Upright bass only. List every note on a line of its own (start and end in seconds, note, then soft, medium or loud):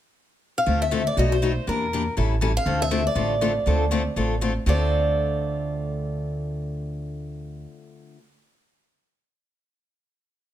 0.67 1.07 D2 medium
1.17 1.57 B1 medium
1.67 2.07 E2 medium
2.17 2.57 A1 medium
2.66 3.06 D2 medium
3.15 3.56 A1 medium
3.66 4.06 D2 medium
4.16 4.56 A1 medium
4.66 7.64 D2 medium